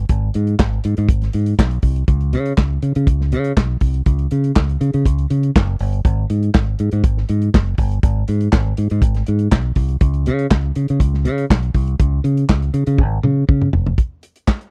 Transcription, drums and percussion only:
0.09 kick loud
0.09 closed hi-hat medium
0.34 closed hi-hat medium
0.47 closed hi-hat soft
0.59 kick loud
0.59 snare loud
0.59 clap medium
0.84 closed hi-hat medium
0.97 closed hi-hat soft
1.09 kick loud
1.09 closed hi-hat medium
1.22 snare soft
1.22 closed hi-hat soft
1.33 closed hi-hat medium
1.46 closed hi-hat soft
1.59 kick loud
1.59 snare loud
1.59 clap loud
1.71 closed hi-hat soft
1.82 kick loud
1.82 open hi-hat medium
1.96 closed hi-hat soft
2.08 kick loud
2.08 closed hi-hat medium
2.21 closed hi-hat soft
2.33 closed hi-hat medium
2.46 closed hi-hat soft
2.58 kick loud
2.58 snare loud
2.58 clap medium
2.82 closed hi-hat medium
2.95 closed hi-hat medium
3.07 kick loud
3.07 closed hi-hat medium
3.21 snare soft
3.32 closed hi-hat medium
3.44 closed hi-hat soft
3.57 kick loud
3.57 snare loud
3.57 clap medium
3.81 kick medium
3.81 open hi-hat medium
3.94 closed hi-hat soft
4.06 kick loud
4.06 closed hi-hat medium
4.19 closed hi-hat soft
4.31 closed hi-hat medium
4.44 closed hi-hat soft
4.56 kick loud
4.56 snare loud
4.56 clap medium
4.69 closed hi-hat soft
4.81 closed hi-hat medium
4.94 closed hi-hat soft
5.06 kick loud
5.06 closed hi-hat medium
5.19 closed hi-hat soft
5.30 closed hi-hat medium
5.43 closed hi-hat soft
5.56 kick loud
5.56 snare loud
5.56 clap loud
5.79 open hi-hat medium
5.93 closed hi-hat soft
6.05 kick loud
6.05 closed hi-hat medium
6.30 closed hi-hat medium
6.43 closed hi-hat soft
6.54 kick loud
6.54 snare loud
6.54 clap medium
6.79 closed hi-hat medium
6.92 closed hi-hat medium
7.04 kick loud
7.04 closed hi-hat medium
7.18 snare soft
7.29 closed hi-hat medium
7.42 closed hi-hat soft
7.54 kick loud
7.54 snare loud
7.54 clap medium
7.78 kick loud
7.78 open hi-hat medium
7.91 closed hi-hat soft
8.03 kick loud
8.03 closed hi-hat medium
8.28 closed hi-hat medium
8.41 closed hi-hat soft
8.53 kick loud
8.53 snare loud
8.53 clap medium
8.77 closed hi-hat medium
8.90 closed hi-hat medium
9.02 kick loud
9.02 closed hi-hat medium
9.15 snare soft
9.15 closed hi-hat soft
9.27 closed hi-hat medium
9.39 closed hi-hat soft
9.52 kick loud
9.52 snare loud
9.52 clap medium
9.75 kick medium
9.75 open hi-hat medium
9.89 closed hi-hat soft
10.01 kick loud
10.01 closed hi-hat medium
10.14 closed hi-hat soft
10.26 closed hi-hat medium
10.39 closed hi-hat soft
10.51 kick loud
10.51 snare loud
10.51 clap medium
10.75 closed hi-hat medium
10.88 closed hi-hat medium
11.00 kick loud
11.00 closed hi-hat medium
11.14 snare soft
11.25 closed hi-hat medium
11.38 closed hi-hat soft
11.50 kick loud
11.50 snare loud
11.50 clap medium
11.63 closed hi-hat soft
11.74 kick loud
11.74 open hi-hat medium
11.87 closed hi-hat soft
12.00 kick loud
12.00 closed hi-hat medium
12.25 closed hi-hat medium
12.37 closed hi-hat soft
12.49 kick loud
12.49 snare loud
12.49 clap medium
12.62 closed hi-hat soft
12.74 closed hi-hat medium
12.87 closed hi-hat medium
12.98 kick loud
12.98 high tom medium
13.23 mid tom medium
13.49 kick loud
13.62 mid tom medium
13.73 floor tom loud
13.87 floor tom medium
13.98 kick loud
13.98 closed hi-hat medium
14.23 closed hi-hat medium
14.36 closed hi-hat soft
14.48 kick loud
14.48 snare medium
14.48 clap medium
14.61 closed hi-hat soft

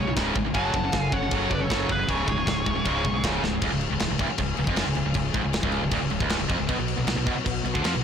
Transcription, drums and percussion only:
0.16 kick loud
0.16 snare loud
0.16 crash medium
0.36 kick medium
0.54 kick loud
0.54 crash medium
0.74 kick loud
0.92 kick loud
0.92 snare loud
0.92 crash medium
1.12 kick loud
1.31 kick loud
1.31 crash medium
1.51 kick medium
1.70 kick loud
1.70 snare loud
1.70 crash medium
1.89 kick medium
2.09 kick loud
2.09 crash medium
2.28 kick medium
2.47 kick loud
2.47 snare loud
2.47 crash medium
2.66 kick medium
2.85 kick loud
2.85 crash medium
3.05 kick medium
3.24 kick loud
3.24 snare loud
3.24 crash medium
3.44 snare medium
3.62 kick loud
3.62 crash medium
3.81 crash medium
3.99 snare loud
3.99 crash medium
4.19 kick loud
4.19 crash medium
4.38 kick loud
4.38 crash medium
4.57 crash medium
4.67 kick loud
4.76 snare loud
4.76 crash loud
4.95 crash medium
5.14 kick medium
5.14 crash medium
5.34 kick loud
5.34 crash medium
5.53 snare loud
5.53 crash medium
5.63 kick loud
5.72 crash medium
5.91 kick loud
5.91 crash medium
6.10 crash medium
6.20 kick loud
6.29 snare loud
6.29 crash loud
6.49 kick loud
6.49 crash medium
6.69 kick loud
6.69 crash medium
6.88 crash medium
7.07 snare loud
7.07 crash medium
7.27 kick loud
7.27 crash medium
7.46 kick loud
7.46 crash loud
7.66 crash medium
7.75 kick loud
7.84 snare loud
7.84 crash medium

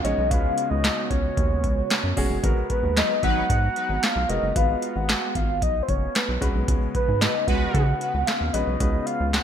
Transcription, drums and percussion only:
0.05 closed hi-hat medium
0.31 kick loud
0.31 closed hi-hat loud
0.58 closed hi-hat medium
0.84 snare loud
0.84 clap medium
0.84 closed hi-hat medium
1.11 kick medium
1.11 closed hi-hat medium
1.37 kick loud
1.37 closed hi-hat medium
1.64 kick loud
1.64 closed hi-hat medium
1.90 snare loud
1.90 clap loud
1.90 closed hi-hat loud
2.17 kick medium
2.17 open hi-hat medium
2.44 kick loud
2.44 closed hi-hat loud
2.70 kick medium
2.70 closed hi-hat medium
2.97 snare loud
2.97 clap medium
2.97 closed hi-hat medium
3.23 kick medium
3.23 closed hi-hat medium
3.50 kick loud
3.50 closed hi-hat medium
3.76 closed hi-hat medium
4.03 snare loud
4.03 clap loud
4.03 closed hi-hat loud
4.30 closed hi-hat medium
4.56 kick loud
4.56 closed hi-hat loud
4.82 closed hi-hat medium
5.09 snare loud
5.09 clap medium
5.09 closed hi-hat medium
5.35 kick medium
5.35 closed hi-hat medium
5.62 kick loud
5.62 closed hi-hat medium
5.89 kick medium
5.89 closed hi-hat medium
6.15 snare loud
6.15 clap loud
6.15 closed hi-hat loud
6.42 kick medium
6.42 closed hi-hat medium
6.68 kick loud
6.68 closed hi-hat loud
6.95 kick medium
6.95 closed hi-hat medium
7.22 snare loud
7.22 clap medium
7.22 closed hi-hat medium
7.48 kick loud
7.48 closed hi-hat medium
7.74 kick loud
7.74 closed hi-hat medium
8.01 closed hi-hat medium
8.27 snare loud
8.27 clap medium
8.27 closed hi-hat loud
8.54 closed hi-hat medium
8.80 kick loud
8.80 closed hi-hat loud
9.07 closed hi-hat medium
9.34 snare loud
9.34 clap medium
9.34 closed hi-hat medium

